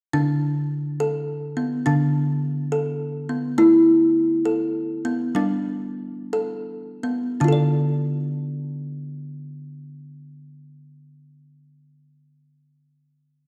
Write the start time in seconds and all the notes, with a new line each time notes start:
0.14 D3 D4
1.00 A4
1.57 B3
1.86 D3 D4
2.72 A4
3.29 B3
3.58 A3 E4
4.45 A4
5.05 B3
5.35 G3 D4
6.33 A4
7.03 B3
7.40 D3 D4
7.44 F4
7.48 A4
7.52 D5